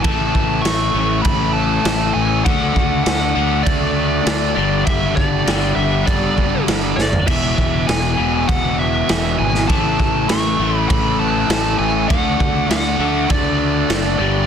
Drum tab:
CC |x---x---x---x---|x---x---x---x---|x---x---x---x---|x---x---x---x---|
SD |----o-------o---|----o-------o---|----o-------o-o-|----o-------o--o|
FT |----------------|----------------|---------------o|----------------|
BD |o-o-----o-------|o-o-----o-------|o-o-----o-o-----|o-o-----o-------|

CC |x---x---x---x---|x---x---x---x---|
SD |----o-------o---|----o-------o---|
FT |----------------|----------------|
BD |o-o-----o-------|o-o-----o-------|